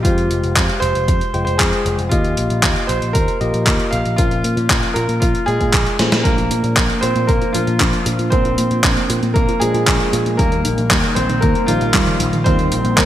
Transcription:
0.03 F2 G#3 F4 G4 C5, kick, closed hi-hat
0.18 closed hi-hat
0.30 F1, closed hi-hat
0.43 F1, closed hi-hat
0.56 F2, kick, clap, closed hi-hat
0.69 closed hi-hat
0.80 F1 C5, closed hi-hat
0.95 F1, closed hi-hat
1.08 F2, kick, closed hi-hat
1.21 closed hi-hat
1.34 F1 G#3 F4 C5 G5, closed hi-hat
1.45 F1 C5, closed hi-hat
1.58 F2 G#4, kick, clap, closed hi-hat
1.73 closed hi-hat
1.85 F1, closed hi-hat
1.98 F1, closed hi-hat
2.09 D#2 A#3 F4 G4 D#5, kick, closed hi-hat
2.24 closed hi-hat
2.37 A#1, closed hi-hat
2.50 A#1, closed hi-hat
2.63 D#2, kick, clap, closed hi-hat
2.76 closed hi-hat
2.87 A#1 C5, closed hi-hat
3.02 A#1, closed hi-hat
3.13 D#2 A#4, kick, closed hi-hat
3.28 closed hi-hat
3.41 A#1 A#3 F4 G4 D#5, closed hi-hat
3.54 A#1, closed hi-hat
3.67 D#2, kick, clap, closed hi-hat
3.80 closed hi-hat
3.91 A#1 F5, closed hi-hat
4.05 A#1, closed hi-hat
4.16 A#1 F3 A#3 C#4 F4 A#4, kick, closed hi-hat
4.31 closed hi-hat
4.44 A#2, closed hi-hat
4.57 A#2, closed hi-hat
4.70 A#1, kick, clap, closed hi-hat
4.83 closed hi-hat
4.94 A#2 A#4, closed hi-hat
5.09 A#2, closed hi-hat
5.20 A#1 F4, kick, closed hi-hat
5.35 closed hi-hat
5.46 A#2 G#3 G#4, closed hi-hat
5.61 A#2, kick, closed hi-hat
5.73 A#1, kick, clap, closed hi-hat
5.86 closed hi-hat
5.99 A#2 F3 A#3 C#4 C5, snare, closed hi-hat
6.12 A#2, snare, closed hi-hat
6.23 A#1 F3 A#3 D4 A#4, kick, closed hi-hat
6.38 F4, closed hi-hat
6.51 A#2 A#3, closed hi-hat
6.64 A#2 F4, closed hi-hat
6.77 A#1 D4, kick, clap, closed hi-hat
6.90 A#3, closed hi-hat
7.01 A#2 A#3 C4 C5, closed hi-hat
7.16 A#2 A#3, closed hi-hat
7.27 A#1 A#3 A#4, kick, closed hi-hat
7.42 F4, closed hi-hat
7.53 A#2 F3 A#3 D4 F4 A#4, closed hi-hat
7.67 A#2 F4, closed hi-hat
7.80 A#1 D4, kick, clap, closed hi-hat
7.93 A#3, closed hi-hat
8.06 A#2 A#3, closed hi-hat
8.19 A#2 A#3, closed hi-hat
8.30 A#1 F3 A#3 C4 D4 A#4 C5, kick, closed hi-hat
8.45 F4, closed hi-hat
8.58 A#2 A#3, closed hi-hat
8.71 A#2 F4, closed hi-hat
8.84 A#1 D4, kick, clap, closed hi-hat
8.97 A#3, closed hi-hat
9.10 A#2 A#3, closed hi-hat
9.22 A#2 A#3, closed hi-hat
9.34 A#1 A#3 A#4, kick, closed hi-hat
9.48 F4, closed hi-hat
9.60 A#2 F3 G#3 A#3 D4 G#4 A#4, closed hi-hat
9.74 A#2 F4, closed hi-hat
9.87 A#1 D4, kick, clap, closed hi-hat
10.00 A#3, closed hi-hat
10.13 A#2 A#3, closed hi-hat
10.26 A#2 A#3, closed hi-hat
10.37 D#2 D#3 G3 A#3 D#4 A#4, kick, closed hi-hat
10.52 A#3, closed hi-hat
10.65 A#1 D#3, closed hi-hat
10.78 A#1 A#3, closed hi-hat
10.91 D#2 G3, kick, clap, closed hi-hat
11.04 D#3, closed hi-hat
11.15 A#1 D#3 C4 C5, closed hi-hat
11.29 A#1 D#3, closed hi-hat
11.41 D#2 D#3 A#3 A#4, kick, closed hi-hat
11.55 A#3, closed hi-hat
11.67 A#1 D#3 F3 G3 A#3 D#4 F4 A#4, closed hi-hat
11.81 A#1 A#3, closed hi-hat
11.94 D#2 G3, kick, clap, closed hi-hat
12.07 D#3, closed hi-hat
12.20 A#1 D#3, closed hi-hat
12.33 A#1 D#3, closed hi-hat
12.44 D#2 D#3 G3 A#3 C4 D#4 A#4 C5, kick, closed hi-hat
12.59 A#3, closed hi-hat
12.72 A#1 D#3, closed hi-hat
12.85 A#1 A#3, closed hi-hat
12.96 D#2 G3 A#3 A#4, kick, clap, closed hi-hat

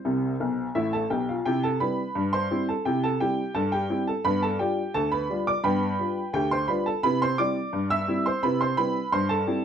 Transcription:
Already playing: C5
0.05 C2 C3
0.40 B1 B2
0.75 A1 A2 E4 E5
0.93 A4 A5
1.10 B1 B2 G4 G5
1.29 F4 F5
1.46 C3 E4 G4 G5
1.63 A4 A5
1.80 G3 C4 E4 B4 B5
2.15 G2
2.33 C5 C6
2.51 G3 C4 E4
2.69 A4 A5
2.85 C3 E4 G4 G5
3.04 A4 A5
3.20 G3 C4 E4 G4 G5
3.55 G2 A4 A5
3.72 G4 G5
3.90 G3 C4 E4
4.07 A4 A5
4.25 G2 B3 B4 B5
4.42 A4 A5
4.59 G3 D4 F4 G4 G5
4.94 D2 A4 A5
5.12 B4 B5
5.30 G3 D4 F4
5.47 D5 D6
5.64 G2 B3 B4 G5 B5
5.99 G3 D4 F4
6.33 D2 G4 G5
6.51 C5 C6
6.68 G3 D4 F4 B4 B5
6.86 A4 A5
7.03 C3 E4 B4 B5
7.22 C5 C6
7.38 G3 C4 E4 D5 D6
7.73 G2
7.90 E5 E6
8.08 G3 C4 E4
8.26 C5 C6
8.43 C3 E4 B4 B5
8.61 C5 C6
8.77 G3 C4 E4 B4 B5
9.12 G2 C5 C6
9.29 A4 A5
9.47 G3 C4 E4

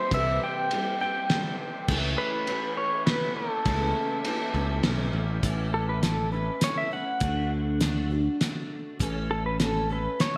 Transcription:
Already playing: G3 C4 E4 C5
0.11 C2 C3 E3 G3 C4 E4 E5, kick, ride
0.44 G5
0.71 E3 G3 C4 E4, ride
1.00 G3 C4 E4 G5
1.30 E3 G3 C4 E4, snare, ride
1.88 C#2 C#3 E3 A3 C#4 E4, kick, crash
2.18 B4
2.47 E3 A3 C#4 E4, ride
2.77 C#5
3.06 E3 A3 C#4 E4 B4, snare, ride
3.37 A4
3.65 C#2 C#3 E3 A3 C#4 E4, kick, ride
4.25 E3 A3 C#4 E4, ride
4.54 C#2 A3 C#4 E4
4.83 B1 E3 A3 C#4 E4, snare, ride
5.13 A1
5.43 A1 A2 E3 A3 C#4 E4, kick, closed hi-hat
5.74 A4
5.89 B4
6.03 E3 A3 C#4 E4 A4, snare, closed hi-hat
6.32 A3 C#4 E4 B4
6.61 E3 A3 C#4 E4 C#5, snare, closed hi-hat
6.78 E5
6.91 A3 C#4 E4 F#5
7.20 D2 D3 A3 D4 F#4, kick, closed hi-hat
7.80 D3 A3 D4 F#4, snare, closed hi-hat
8.10 A3 D4 F#4
8.41 D3 A3 D4 F#4, snare, closed hi-hat
8.99 A1 A2 E3 A3 C#4 A4, kick, closed hi-hat
9.31 A4
9.46 B4
9.59 E3 A3 C#4 A4, snare, closed hi-hat
9.89 A3 C#4 A4 B4
10.19 E3 A3 C#4 A4 C#5, snare, closed hi-hat

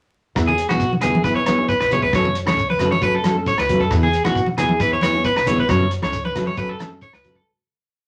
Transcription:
0.35 E2 E3 B3 E4 G#4, kick, cross-stick, shekere
0.47 G#4, low conga
0.58 closed hi-hat, shekere
0.69 B1 B3 E4 F#4 G#4, cross-stick, high conga
0.80 kick, shekere
0.93 high conga
1.01 E2 E3 B3 E4 G#4, cross-stick, closed hi-hat, low conga, shekere
1.15 high conga
1.24 E3 B3 E4 G#4 B4, kick, shekere
1.36 C#5
1.46 E3 B3 E4 G#4 C#5, cross-stick, closed hi-hat, high conga, shekere
1.58 B3 E4 G#4
1.69 B4, kick, shekere
1.80 B1 B4, cross-stick
1.90 E2 E3 B3 E4 G#4 C#5, closed hi-hat, low conga, shekere
2.02 C#2 B4, kick
2.13 F#2 F#3 A3 C#4 A4 C#5, kick, cross-stick, shekere
2.25 low conga
2.35 closed hi-hat, shekere
2.46 A3 C#4 A4 C#5, cross-stick, high conga
2.57 kick, shekere
2.70 B4, high conga
2.79 F#2 F#3 A3 C#4 A4, cross-stick, closed hi-hat, low conga, shekere
2.92 C#5, high conga
3.02 F#3 A3 C#4 A4 B4, kick, shekere
3.15 A4
3.24 F#3 A3 C#4, cross-stick, closed hi-hat, high conga, shekere
3.28 A4
3.36 A3 C#4 A4
3.46 C#5, kick, shekere
3.58 C#2 B4, cross-stick
3.69 F#2 F#3 A3 C#4 A4, closed hi-hat, low conga, shekere
3.80 F#2 A4, kick
3.90 E2 E3 B3 E4 G#4, kick, cross-stick, shekere
4.03 G#4, low conga
4.13 closed hi-hat, shekere
4.24 B1 B3 E4 F#4 G#4, cross-stick, high conga
4.35 kick, shekere
4.46 high conga
4.58 E2 E3 B3 E4 G#4, cross-stick, closed hi-hat, low conga, shekere
4.69 high conga
4.80 E3 B3 E4 G#4 B4, kick, shekere
4.93 C#5
5.01 E3 B3 E4 G#4 C#5, cross-stick, closed hi-hat, high conga, shekere
5.13 B3 E4 G#4
5.24 B4, kick, shekere
5.36 B1 B4, cross-stick
5.46 E2 E3 B3 E4 G#4 C#5, closed hi-hat, low conga, shekere
5.58 B1 B4, kick
5.68 F#2 F#3 A3 C#4 A4 C#5, kick, cross-stick, shekere
5.80 low conga
5.91 closed hi-hat, shekere
6.02 C#2 A3 C#4 A4 C#5, cross-stick, high conga
6.13 kick, shekere
6.25 B4, high conga
6.35 F#2 F#3 A3 C#4 A4, cross-stick, closed hi-hat, high conga, low conga
6.47 C#5, high conga
6.57 F#3 A3 C#4 A4 B4, kick, shekere
6.69 A4
6.79 A3 C#4 A4, cross-stick, closed hi-hat, high conga, shekere
6.91 A3 A4
7.02 C#5, kick, shekere
7.13 C#2 B4, cross-stick
7.23 F#2 F#3 A3 C#4 A4, closed hi-hat, low conga, shekere
7.35 C#2 A4, kick

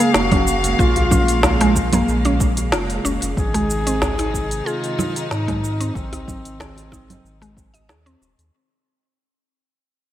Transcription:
Already playing: C#3 G#3 A#3 G#4 F5
0.00 A#3, cabasa
0.14 F1 F#4, snare, cabasa
0.32 C#4, kick, open hi-hat, djembe tone, low conga
0.47 cabasa
0.64 open hi-hat, djembe tone, cabasa
0.79 A#1 F4, kick, djembe slap, cabasa
0.96 open hi-hat, djembe bass
1.11 C#4, kick, low conga, cabasa
1.28 open hi-hat, cabasa
1.43 snare, djembe bass, cabasa
1.61 G#3, open hi-hat, djembe tone
1.76 kick, djembe slap, cabasa
1.93 A#3, open hi-hat, low conga, cabasa
2.08 A#1, cabasa
2.25 C#4, open hi-hat, djembe tone
2.40 kick, cabasa
2.57 open hi-hat, djembe tone, cabasa
2.72 F1 F4, snare, cabasa
2.90 open hi-hat
3.05 F1 C#4, djembe tone, cabasa
3.22 F1, open hi-hat, cabasa
3.37 G#1 C3 D#3 D#4 G#4, kick, cabasa
3.54 G#3, open hi-hat, djembe bass
3.70 cabasa
3.87 C4, open hi-hat, cabasa
4.02 snare, djembe bass, cabasa
4.18 D#4, open hi-hat, djembe tone
4.34 kick, djembe slap, cabasa
4.51 open hi-hat, cabasa
4.66 F4 G#4, cabasa
4.84 open hi-hat
4.98 D#4, djembe slap, low conga, cabasa
5.16 open hi-hat, cabasa
5.31 G#2 D#4, snare, cabasa
5.48 G#3, kick, open hi-hat, djembe tone, low conga
5.64 cabasa
5.80 C4, open hi-hat, djembe tone, cabasa
5.95 G#1 C4, kick, djembe slap, cabasa
6.12 D#4, open hi-hat, djembe bass
6.28 kick, low conga, cabasa
6.45 open hi-hat, cabasa
6.60 G#4, snare, djembe bass, cabasa
6.77 open hi-hat, djembe tone
6.92 D#4, kick, djembe slap, cabasa
7.10 open hi-hat, low conga, cabasa
7.24 G#1, cabasa
7.41 G#3, open hi-hat, djembe tone
7.57 kick, cabasa
7.74 D#5, open hi-hat, djembe tone, cabasa
7.89 D#2 G#4, snare, cabasa
8.06 C4, open hi-hat
8.21 D#1, djembe tone, cabasa
8.38 D#2, open hi-hat, cabasa

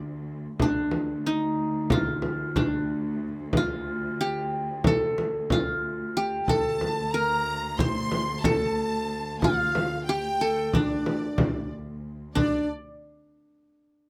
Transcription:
Already playing: D2 D4 F4
0.59 D2 D4, frame drum
0.91 frame drum
1.26 D#4
1.90 F4, frame drum
2.22 frame drum
2.56 D4, frame drum
3.53 frame drum
3.57 F4
4.21 G4
4.84 A4, frame drum
5.18 frame drum
5.50 F4, frame drum
6.17 G4
6.47 D2 A4 A5, frame drum
6.81 frame drum
7.12 A#4 A#5
7.78 C5 C6, frame drum
8.12 frame drum
8.43 A4 A5, frame drum
9.41 F4 F5, frame drum
9.75 frame drum
10.07 G4 G5
10.41 A4
10.73 D4 D5, frame drum
11.06 frame drum
11.38 frame drum
12.35 D4 D5, frame drum

